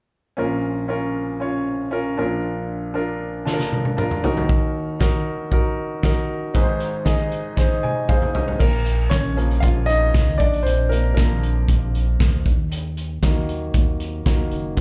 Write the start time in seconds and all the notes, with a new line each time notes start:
0.37 A#1 A#2 C#4 F4 A#4
0.88 C#4 F4 A#4
1.40 C#4 F4 C#5
1.91 C#4 F4 A#4
2.17 A#1 A#2 D4 F4 A#4
2.94 D4 F4 A#4
3.45 D4 F4 A4, snare
3.54 A#4
3.59 snare
3.72 high tom
3.85 high tom
3.97 D4 F4 A#4, mid tom
4.11 mid tom
4.23 D#2 D#3 D#4 F#4 A#4, floor tom
4.37 floor tom
4.49 kick
5.00 D#4 F#4 A#4, kick, snare
5.51 D#4 F#4 A#4, kick
6.03 D#4 F#4 A#4, kick, snare
6.54 G#1 G#2 D#4 G#4 B4, kick, closed hi-hat
6.61 C5
6.80 closed hi-hat
7.05 D#4 G#4 D#5, kick, snare, closed hi-hat
7.32 closed hi-hat
7.56 D#4 G#4 C5, kick, snare
7.83 G#5, high tom
8.08 D#4 G#4 C5 F5, kick, mid tom
8.22 mid tom
8.35 D#5, floor tom
8.48 floor tom
8.59 A#1 A#3 A#4, kick, crash
8.86 closed hi-hat
9.10 A#1 C#4 C#5, kick, snare, closed hi-hat
9.36 C#3 F3 A#3, closed hi-hat
9.51 closed hi-hat
9.60 A#1 F4 F5, kick, closed hi-hat
9.86 D#4 D#5, closed hi-hat
10.14 C#2, kick, snare, closed hi-hat
10.38 A#1 D4 D5, kick, closed hi-hat
10.53 closed hi-hat
10.63 A#1 C4 C5, closed hi-hat
10.89 A#3 A#4, closed hi-hat
11.14 A#1 D3 F3 A#3 A#4, kick, snare, closed hi-hat
11.44 closed hi-hat
11.68 A#1, kick, closed hi-hat
11.95 closed hi-hat
12.20 D2, kick, snare, closed hi-hat
12.46 D#2, kick, closed hi-hat
12.72 closed hi-hat
12.97 closed hi-hat
13.23 D#2 D#3 F#3 A#3, kick, snare, closed hi-hat
13.49 closed hi-hat
13.74 D#2, kick, closed hi-hat
14.00 closed hi-hat
14.26 D#2 D#3 F#3 A#3, kick, snare, closed hi-hat
14.51 F#1, closed hi-hat
14.77 G#1 D#3 G#3 C4, kick, closed hi-hat